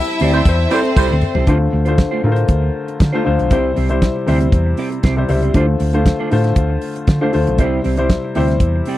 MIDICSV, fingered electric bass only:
0, 0, Header, 1, 2, 480
1, 0, Start_track
1, 0, Key_signature, -1, "minor"
1, 0, Tempo, 509338
1, 1387, Time_signature, 4, 2, 24, 8
1, 8461, End_track
2, 0, Start_track
2, 0, Title_t, "Fingered electric bass"
2, 0, Program_c, 0, 33
2, 198, Note_on_c, 0, 38, 94
2, 380, Note_off_c, 0, 38, 0
2, 434, Note_on_c, 0, 40, 106
2, 617, Note_off_c, 0, 40, 0
2, 915, Note_on_c, 0, 36, 95
2, 1011, Note_off_c, 0, 36, 0
2, 1056, Note_on_c, 0, 38, 100
2, 1135, Note_off_c, 0, 38, 0
2, 1283, Note_on_c, 0, 36, 84
2, 1367, Note_off_c, 0, 36, 0
2, 1389, Note_on_c, 0, 38, 86
2, 1573, Note_off_c, 0, 38, 0
2, 1631, Note_on_c, 0, 38, 84
2, 1912, Note_off_c, 0, 38, 0
2, 2109, Note_on_c, 0, 45, 83
2, 2293, Note_off_c, 0, 45, 0
2, 2348, Note_on_c, 0, 38, 90
2, 2532, Note_off_c, 0, 38, 0
2, 2834, Note_on_c, 0, 50, 86
2, 2929, Note_off_c, 0, 50, 0
2, 3081, Note_on_c, 0, 38, 82
2, 3173, Note_off_c, 0, 38, 0
2, 3202, Note_on_c, 0, 35, 71
2, 3311, Note_off_c, 0, 35, 0
2, 3311, Note_on_c, 0, 36, 90
2, 3495, Note_off_c, 0, 36, 0
2, 3557, Note_on_c, 0, 36, 79
2, 3837, Note_off_c, 0, 36, 0
2, 4037, Note_on_c, 0, 38, 89
2, 4219, Note_off_c, 0, 38, 0
2, 4266, Note_on_c, 0, 40, 97
2, 4452, Note_off_c, 0, 40, 0
2, 4750, Note_on_c, 0, 36, 84
2, 4935, Note_off_c, 0, 36, 0
2, 4989, Note_on_c, 0, 37, 81
2, 5174, Note_off_c, 0, 37, 0
2, 5228, Note_on_c, 0, 38, 95
2, 5414, Note_off_c, 0, 38, 0
2, 5470, Note_on_c, 0, 38, 88
2, 5753, Note_off_c, 0, 38, 0
2, 5958, Note_on_c, 0, 45, 82
2, 6140, Note_off_c, 0, 45, 0
2, 6184, Note_on_c, 0, 38, 90
2, 6372, Note_off_c, 0, 38, 0
2, 6672, Note_on_c, 0, 50, 85
2, 6770, Note_off_c, 0, 50, 0
2, 6926, Note_on_c, 0, 38, 78
2, 7018, Note_off_c, 0, 38, 0
2, 7046, Note_on_c, 0, 35, 74
2, 7149, Note_off_c, 0, 35, 0
2, 7149, Note_on_c, 0, 36, 88
2, 7335, Note_off_c, 0, 36, 0
2, 7402, Note_on_c, 0, 36, 74
2, 7681, Note_off_c, 0, 36, 0
2, 7885, Note_on_c, 0, 38, 82
2, 8066, Note_off_c, 0, 38, 0
2, 8106, Note_on_c, 0, 40, 91
2, 8294, Note_off_c, 0, 40, 0
2, 8461, End_track
0, 0, End_of_file